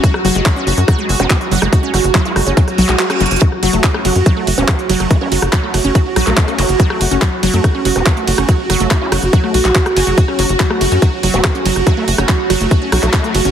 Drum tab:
RD |--------------------------------|--------------------------------|----x-------x-------x-------x---|----x-------x-------x-------x---|
HH |x---o-x-x---o-x-x---o-x-x-x-o-x-|x---o-x-x-x-o-x-x-x-o-x-x-x-xxxx|x---o-x-x---o-x-x---o-x-x-x-o-x-|x---o-x-x---o-x-x---o-x-x-x-o-x-|
CP |--------x---------------x-------|--------x-------------x-x-------|--------x---------------x-------|--------x-------------x-x-------|
SD |--r-----r-------r-----r-------r-|----r-------r-----r-------r-----|--r-------r-----r-------r-----r-|------r-----r-------r-----r-----|
BD |o-------o-------o-------o-------|o-------o-------o---------------|o-------o-------o-------o-------|o-------o-------o-------o-------|

RD |----x-------x-------x-------x---|----x-------x-------x-------x---|----x-------x-------x-------x---|----x-------x-------x-------x---|
HH |x---o-x-x---o-x-x---o-x-x-x-o-x-|x---o-x-x---o-x-x---o-x-x-x-o-x-|x---o-x-x---o-x-x---o-x-x-x-o-x-|x---o-x-x---o-x-x---o-x-x-x-o-x-|
CP |--------x---------------x-------|--------x-------------x-x-------|--------x---------------x-------|--------x-------------x-x-------|
SD |--r-----r-------r-----r-------r-|----r-------r-----r-------r-----|--r-------r-----r-------r-----r-|------r-----r-------r-----r-----|
BD |o-------o-------o-------o-------|o-------o-------o-------o-------|o-------o-------o-------o-------|o-------o-------o-------o-------|